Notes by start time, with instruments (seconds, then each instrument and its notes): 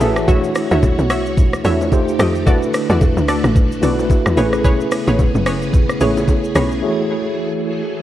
Already playing: string machine E3 A3 B4, tine electric piano A3 E4 F#4 G#4 B4 C#5 F#5 G#5 A5
0.00 log drum bass A1, synth stab G#4 A4 E5, tine electric piano B4 E5, open hi-hat, high bongo, low bongo, shaker
0.17 tine electric piano G#4 C#5, cross-stick, shaker
0.27 tine electric piano A3 D4 E4 F#4 C#5, synth stab F#4 C#5 E5, string machine F#4 C#5, kick, low conga, shaker
0.44 shaker
0.55 cross-stick, open hi-hat, shaker
0.71 log drum bass D2, synth stab F#4 C#5 E5, shaker
0.83 kick, high bongo, low conga, shaker
0.99 log drum bass B1, shaker
1.10 synth stab F#4 C#5 E5, cross-stick, open hi-hat, shaker
1.26 log drum bass C#2, shaker
1.37 kick, low conga, shaker
1.53 cross-stick, shaker
1.64 log drum bass E2, tine electric piano A3 D4 E4 F#4 C#5, synth stab F#4 C#5 E5, open hi-hat, shaker
1.81 low bongo, shaker
1.91 string machine D#3 A3 G4, tine electric piano A3 D#4 F4 G4 C5, kick, high bongo, shaker
2.08 shaker
2.19 log drum bass F2, synth stab G4 A4 D#5, cross-stick, open hi-hat, high bongo, low bongo, shaker
2.35 shaker
2.45 string machine D3 F#4, tine electric piano A3 D4 E4 F#4 B4, synth stab F#4 A4 D5, kick, low conga, shaker
2.62 shaker
2.73 cross-stick, open hi-hat, shaker
2.89 log drum bass E2, synth stab F#4 A4 D5, shaker
3.01 kick, high bongo, low conga, shaker
3.17 log drum bass D2, shaker
3.28 synth stab F#4 A4 D5, cross-stick, open hi-hat, shaker
3.44 log drum bass A1, cross-stick, shaker
3.55 kick, low conga, shaker
3.72 shaker
3.82 log drum bass B1, tine electric piano A3 D4 E4 F#4 B4, synth stab F#4 A4 D5, open hi-hat, shaker
3.99 low bongo, shaker
4.10 kick, high bongo, shaker
4.26 log drum bass E2, cross-stick, shaker
4.36 log drum bass A1, string machine C#3 B3 G#4, tine electric piano A3 C#4 E4 G#4 B4, synth stab G#4 B4 C#5, open hi-hat, high bongo, low bongo, shaker
4.53 cross-stick, shaker
4.64 synth stab G#4 B4 C#5, kick, low conga, shaker
4.80 shaker
4.92 cross-stick, open hi-hat, shaker
5.07 log drum bass A1, synth stab G#4 B4 C#5, shaker
5.19 kick, high bongo, low conga, shaker
5.35 log drum bass F#1, shaker
5.46 synth stab G#4 B4 C#5, cross-stick, open hi-hat, shaker
5.62 log drum bass G#1, shaker
5.73 kick, low conga, shaker
5.90 cross-stick, shaker
6.00 log drum bass A1, tine electric piano A3 C#4 E4 G#4 C#5, synth stab G#4 B4 C#5, open hi-hat, shaker
6.17 low bongo, shaker
6.28 kick, high bongo, shaker
6.44 shaker
6.55 log drum bass B1, synth stab G#4 B4 C#5, cross-stick, open hi-hat, high bongo, low bongo, shaker
6.71 shaker
6.82 string machine E3 A3, tine electric piano A3 E4 F#4 G#4 C#5